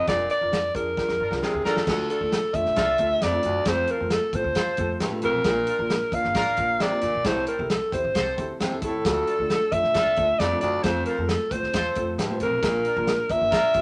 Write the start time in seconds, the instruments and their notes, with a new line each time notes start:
0.08 upright bass F1, baritone saxophone A#2, upright piano D4 F4 A#4, alto saxophone D5, kick, snare, closed hi-hat
0.30 alto saxophone D5, closed hi-hat
0.41 upright bass F1, upright piano D4 F4 A#4
0.52 upright bass F2, snare, closed hi-hat
0.75 upright bass F2, upright piano D4 F4 G#4, alto saxophone A#4, kick, closed hi-hat
0.97 upright piano D4 F4 A#4, kick, snare
1.08 upright bass F2, snare
1.19 upright bass G2, horn section D4 F4 A#4
1.31 upright bass C2, upright piano D4 F4 A#4, snare
1.42 baritone saxophone C3, horn section D4 F4 A#4, alto saxophone G#4, snare
1.54 upright bass D2
1.64 upright bass E2, baritone saxophone A#2, upright piano D4 F4 A#4, horn section D4 F4 A#4, alto saxophone A4, snare
1.76 upright bass D#2, snare
1.87 baritone saxophone D2, upright bass D2, upright piano A3 D4 F4 A4, kick, snare, crash
2.09 horn section D4 F4 A4, alto saxophone A4, closed hi-hat
2.20 upright bass D2, upright piano A3 D4 F4 A4
2.32 snare, closed hi-hat
2.54 upright bass F2, upright piano A3 D4 F4 A4, alto saxophone E5, kick, closed hi-hat
2.66 upright bass A#1, snare
2.76 upright bass C2, horn section D4 F4 A4, kick, snare, closed hi-hat
2.98 upright bass D2, upright piano A3 D4 F4 A4, kick, closed hi-hat
3.21 baritone saxophone F2, upright bass F2, alto saxophone D5, snare, closed hi-hat
3.32 upright piano A3 D4 F4 A4
3.43 baritone saxophone D2, upright bass F#2, closed hi-hat
3.65 baritone saxophone F2, upright bass F2, upright piano A3 C4 F4 A4, alto saxophone C5, kick, snare, closed hi-hat
3.87 horn section F4 A4 C5, alto saxophone A#4, closed hi-hat
4.00 upright bass F2, upright piano A3 C4 F4 A4
4.10 alto saxophone A4, snare, closed hi-hat
4.33 upright bass A2, upright piano A3 C4 F4 A4, alto saxophone C5, kick, closed hi-hat
4.44 upright bass D2
4.55 upright bass E2, horn section F4 A4 C5, kick, snare, closed hi-hat
4.77 upright bass F2, upright piano A3 C4 F4 A4, kick, closed hi-hat
5.00 baritone saxophone G2, upright bass A2, snare, closed hi-hat
5.11 upright piano A3 C4 F4 A4
5.22 upright bass B1, baritone saxophone F2, alto saxophone A#4, closed hi-hat
5.44 upright bass A#1, baritone saxophone A#2, upright piano A#3 D4 F4 A#4, kick, snare, closed hi-hat
5.67 horn section D4 F4 A#4, closed hi-hat
5.78 upright bass A#1, upright piano A#3 D4 F4 A#4
5.90 snare, closed hi-hat
6.12 upright bass D2, upright piano A#3 D4 F4 A#4, alto saxophone F5, kick, closed hi-hat
6.24 upright bass G1, snare
6.34 upright bass A1, horn section D4 F4 A#4, kick, snare, closed hi-hat
6.57 upright bass A#1, upright piano A#3 D4 F4 A#4, kick, closed hi-hat
6.80 baritone saxophone C3, alto saxophone D5, snare, closed hi-hat
6.91 upright piano A#3 D4 F4 A#4
7.01 upright bass D2, baritone saxophone A#2, closed hi-hat
7.14 upright bass A#1
7.24 upright bass C2, baritone saxophone A2, upright piano C4 E4 G4 A4, alto saxophone C5, kick, snare, closed hi-hat
7.47 horn section G4 A4 C5, alto saxophone A#4, closed hi-hat
7.59 upright bass C2, upright piano C4 E4 G4 A4
7.70 alto saxophone A4, snare, closed hi-hat
7.92 upright bass E2, upright piano C4 E4 G4 C5, alto saxophone C5, kick, closed hi-hat
8.04 upright bass A1
8.14 upright bass C2, horn section G4 A4 C5, kick, snare, closed hi-hat
8.37 upright bass D2, upright piano C4 E4 G4 A4, kick, closed hi-hat
8.60 upright bass E2, baritone saxophone C3, snare, closed hi-hat
8.71 upright piano C4 E4 G4 A4
8.82 upright bass D#2, baritone saxophone A2, alto saxophone A4, kick, closed hi-hat
9.05 upright bass D2, baritone saxophone D2, upright piano A3 D4 F4 A4, kick, snare, closed hi-hat
9.26 horn section D4 F4 A4, closed hi-hat
9.39 upright bass D2, upright piano A3 D4 F4 A4
9.50 snare, closed hi-hat
9.72 upright bass F2, upright piano A3 D4 F4 A4, alto saxophone E5, kick, closed hi-hat
9.84 upright bass A#1, snare
9.94 upright bass C2, horn section D4 F4 A4, kick, snare, closed hi-hat
10.16 upright bass D2, upright piano A3 D4 F4 A4, kick, closed hi-hat
10.39 upright bass F2, baritone saxophone F2, alto saxophone D5, snare, closed hi-hat
10.51 upright piano A3 D4 F4 A4
10.61 baritone saxophone D2, upright bass F#2, alto saxophone D5, closed hi-hat
10.83 upright bass F2, baritone saxophone F2, upright piano A3 C4 F4 A4, alto saxophone C5, kick, snare, closed hi-hat
11.05 horn section F4 A4 C5, alto saxophone A#4, closed hi-hat
11.18 upright bass F2, upright piano A3 C4 F4 A4
11.29 alto saxophone A4, snare, closed hi-hat
11.51 upright bass A2, upright piano A3 C4 F4 C5, alto saxophone C5, kick, closed hi-hat
11.62 upright bass D2, snare
11.73 upright bass E2, horn section F4 A4 C5, kick, snare, closed hi-hat
11.95 upright bass F2, upright piano A3 C4 F4 A4, kick, closed hi-hat
12.18 baritone saxophone G2, upright bass A2, snare, closed hi-hat
12.30 upright piano A3 C4 F4 C5
12.40 upright bass B1, baritone saxophone F2, alto saxophone A#4, closed hi-hat
12.63 upright bass A#1, baritone saxophone A#2, upright piano A#3 D4 F4 A#4, kick, snare, closed hi-hat
12.85 horn section D4 F4 A#4, closed hi-hat
12.97 upright bass A#1, upright piano A#3 D4 F4 A#4
13.07 snare, closed hi-hat
13.30 upright bass D2, upright piano A#3 D4 F4 A#4, alto saxophone E5, kick, closed hi-hat
13.41 upright bass G1
13.50 upright bass A1, horn section D4 F4 A#4, kick, snare, closed hi-hat
13.74 upright bass A#1, upright piano A#3 D4 F4 G4, kick, closed hi-hat